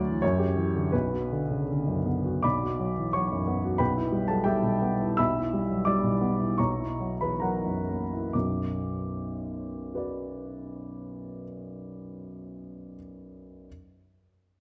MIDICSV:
0, 0, Header, 1, 2, 480
1, 0, Start_track
1, 0, Key_signature, 2, "minor"
1, 0, Tempo, 681818
1, 649, Tempo, 758534
1, 650, Time_signature, 2, 2, 24, 8
1, 1609, Tempo, 699301
1, 2089, Tempo, 657174
1, 3049, Tempo, 706714
1, 4489, Tempo, 832178
1, 4969, Tempo, 928793
1, 5449, Tempo, 792602
1, 6889, Tempo, 773196
1, 9304, End_track
2, 0, Start_track
2, 0, Title_t, "Grand piano"
2, 0, Program_c, 0, 0
2, 0, Control_c, 0, 64, 127
2, 0, Note_on_c, 0, 38, 50
2, 0, Note_on_c, 0, 54, 42
2, 0, Note_on_c, 0, 66, 45
2, 0, Note_on_c, 0, 74, 69
2, 61, Note_on_c, 0, 52, 38
2, 114, Note_off_c, 0, 54, 0
2, 143, Note_off_c, 0, 38, 0
2, 149, Note_off_c, 0, 74, 0
2, 154, Note_on_c, 0, 73, 70
2, 166, Note_off_c, 0, 52, 0
2, 166, Note_on_c, 0, 42, 58
2, 170, Control_c, 0, 64, 0
2, 171, Note_off_c, 0, 66, 0
2, 273, Note_on_c, 0, 67, 41
2, 288, Control_c, 0, 64, 127
2, 395, Note_on_c, 0, 52, 35
2, 467, Note_off_c, 0, 67, 0
2, 525, Note_on_c, 0, 50, 32
2, 597, Note_off_c, 0, 52, 0
2, 640, Note_off_c, 0, 42, 0
2, 648, Note_off_c, 0, 73, 0
2, 648, Note_on_c, 0, 71, 48
2, 653, Note_off_c, 0, 50, 0
2, 655, Note_on_c, 0, 35, 42
2, 663, Control_c, 0, 64, 0
2, 776, Note_on_c, 0, 66, 32
2, 779, Control_c, 0, 64, 127
2, 901, Note_on_c, 0, 50, 33
2, 967, Note_off_c, 0, 66, 0
2, 1018, Note_on_c, 0, 49, 29
2, 1089, Note_off_c, 0, 50, 0
2, 1132, Note_on_c, 0, 50, 33
2, 1135, Note_off_c, 0, 49, 0
2, 1250, Note_on_c, 0, 42, 30
2, 1324, Note_off_c, 0, 50, 0
2, 1365, Note_on_c, 0, 59, 30
2, 1372, Note_off_c, 0, 71, 0
2, 1445, Note_off_c, 0, 42, 0
2, 1489, Note_on_c, 0, 66, 34
2, 1560, Note_off_c, 0, 59, 0
2, 1587, Note_off_c, 0, 35, 0
2, 1600, Note_on_c, 0, 86, 57
2, 1608, Note_off_c, 0, 66, 0
2, 1608, Note_on_c, 0, 74, 45
2, 1609, Note_on_c, 0, 35, 41
2, 1609, Note_on_c, 0, 83, 46
2, 1624, Control_c, 0, 64, 0
2, 1739, Note_on_c, 0, 66, 34
2, 1743, Control_c, 0, 64, 127
2, 1851, Note_on_c, 0, 54, 34
2, 1929, Note_off_c, 0, 66, 0
2, 1979, Note_on_c, 0, 52, 30
2, 2042, Note_off_c, 0, 54, 0
2, 2061, Note_off_c, 0, 74, 0
2, 2062, Note_off_c, 0, 83, 0
2, 2084, Note_off_c, 0, 86, 0
2, 2084, Note_on_c, 0, 85, 61
2, 2091, Note_on_c, 0, 73, 47
2, 2092, Note_off_c, 0, 52, 0
2, 2095, Note_on_c, 0, 54, 35
2, 2222, Note_on_c, 0, 42, 33
2, 2287, Note_off_c, 0, 54, 0
2, 2334, Note_on_c, 0, 59, 33
2, 2409, Note_off_c, 0, 42, 0
2, 2458, Note_on_c, 0, 66, 37
2, 2524, Note_off_c, 0, 59, 0
2, 2541, Note_off_c, 0, 35, 0
2, 2542, Note_off_c, 0, 73, 0
2, 2560, Note_on_c, 0, 83, 58
2, 2564, Note_on_c, 0, 71, 45
2, 2565, Note_on_c, 0, 79, 43
2, 2568, Note_off_c, 0, 85, 0
2, 2571, Note_on_c, 0, 35, 44
2, 2574, Note_off_c, 0, 66, 0
2, 2585, Control_c, 0, 64, 0
2, 2692, Control_c, 0, 64, 127
2, 2697, Note_on_c, 0, 64, 36
2, 2805, Note_on_c, 0, 55, 34
2, 2884, Note_off_c, 0, 64, 0
2, 2900, Note_off_c, 0, 71, 0
2, 2900, Note_off_c, 0, 79, 0
2, 2921, Note_on_c, 0, 81, 58
2, 2923, Note_off_c, 0, 83, 0
2, 2923, Note_on_c, 0, 54, 31
2, 2934, Note_on_c, 0, 69, 44
2, 3000, Note_off_c, 0, 55, 0
2, 3038, Note_on_c, 0, 79, 60
2, 3044, Note_off_c, 0, 69, 0
2, 3047, Note_off_c, 0, 54, 0
2, 3047, Note_off_c, 0, 81, 0
2, 3048, Note_on_c, 0, 67, 49
2, 3051, Note_on_c, 0, 55, 41
2, 3053, Note_on_c, 0, 76, 47
2, 3167, Note_on_c, 0, 47, 36
2, 3242, Note_off_c, 0, 55, 0
2, 3297, Note_on_c, 0, 59, 36
2, 3368, Note_off_c, 0, 47, 0
2, 3427, Note_on_c, 0, 64, 42
2, 3494, Note_off_c, 0, 59, 0
2, 3512, Note_off_c, 0, 67, 0
2, 3513, Note_off_c, 0, 35, 0
2, 3514, Note_off_c, 0, 76, 0
2, 3535, Note_off_c, 0, 79, 0
2, 3536, Note_on_c, 0, 88, 62
2, 3545, Note_off_c, 0, 64, 0
2, 3547, Note_on_c, 0, 83, 51
2, 3548, Note_on_c, 0, 76, 52
2, 3550, Note_on_c, 0, 35, 45
2, 3554, Control_c, 0, 64, 0
2, 3674, Note_on_c, 0, 64, 39
2, 3692, Control_c, 0, 64, 127
2, 3783, Note_on_c, 0, 55, 38
2, 3847, Note_off_c, 0, 64, 0
2, 3900, Note_on_c, 0, 54, 34
2, 3958, Note_off_c, 0, 55, 0
2, 3974, Note_off_c, 0, 83, 0
2, 3975, Note_off_c, 0, 76, 0
2, 3996, Note_off_c, 0, 88, 0
2, 3998, Note_on_c, 0, 86, 63
2, 4006, Note_off_c, 0, 54, 0
2, 4010, Note_on_c, 0, 74, 51
2, 4012, Note_on_c, 0, 55, 39
2, 4123, Note_on_c, 0, 47, 32
2, 4193, Note_off_c, 0, 55, 0
2, 4244, Note_on_c, 0, 59, 34
2, 4313, Note_off_c, 0, 47, 0
2, 4371, Note_on_c, 0, 64, 35
2, 4442, Note_off_c, 0, 59, 0
2, 4468, Note_off_c, 0, 35, 0
2, 4469, Note_off_c, 0, 74, 0
2, 4490, Note_off_c, 0, 86, 0
2, 4492, Note_on_c, 0, 85, 53
2, 4495, Note_off_c, 0, 64, 0
2, 4500, Note_on_c, 0, 35, 38
2, 4500, Note_on_c, 0, 82, 40
2, 4502, Note_on_c, 0, 73, 38
2, 4503, Control_c, 0, 64, 0
2, 4617, Note_on_c, 0, 64, 31
2, 4633, Control_c, 0, 64, 127
2, 4735, Note_on_c, 0, 54, 29
2, 4801, Note_off_c, 0, 64, 0
2, 4826, Note_off_c, 0, 82, 0
2, 4827, Note_off_c, 0, 73, 0
2, 4845, Note_off_c, 0, 85, 0
2, 4855, Note_on_c, 0, 83, 47
2, 4858, Note_on_c, 0, 52, 27
2, 4863, Note_on_c, 0, 71, 36
2, 4925, Note_off_c, 0, 54, 0
2, 4965, Note_on_c, 0, 82, 44
2, 4971, Note_off_c, 0, 71, 0
2, 4973, Note_on_c, 0, 70, 33
2, 4975, Note_off_c, 0, 83, 0
2, 4975, Note_on_c, 0, 78, 34
2, 4976, Note_off_c, 0, 52, 0
2, 4976, Note_on_c, 0, 54, 30
2, 5095, Note_on_c, 0, 42, 25
2, 5167, Note_off_c, 0, 54, 0
2, 5220, Note_on_c, 0, 58, 24
2, 5296, Note_off_c, 0, 42, 0
2, 5342, Note_on_c, 0, 64, 23
2, 5409, Note_off_c, 0, 58, 0
2, 5431, Note_off_c, 0, 70, 0
2, 5432, Note_off_c, 0, 78, 0
2, 5434, Note_off_c, 0, 35, 0
2, 5447, Note_off_c, 0, 82, 0
2, 5449, Note_on_c, 0, 86, 31
2, 5451, Note_off_c, 0, 64, 0
2, 5456, Note_on_c, 0, 35, 27
2, 5458, Note_on_c, 0, 42, 27
2, 5464, Control_c, 0, 64, 0
2, 5613, Control_c, 0, 64, 127
2, 6420, Note_on_c, 0, 66, 23
2, 6427, Note_on_c, 0, 71, 24
2, 6441, Note_on_c, 0, 74, 24
2, 7330, Note_off_c, 0, 86, 0
2, 7338, Note_off_c, 0, 35, 0
2, 7339, Note_off_c, 0, 42, 0
2, 8281, Note_off_c, 0, 66, 0
2, 8285, Note_off_c, 0, 71, 0
2, 8292, Note_off_c, 0, 74, 0
2, 8733, Control_c, 0, 64, 0
2, 9304, End_track
0, 0, End_of_file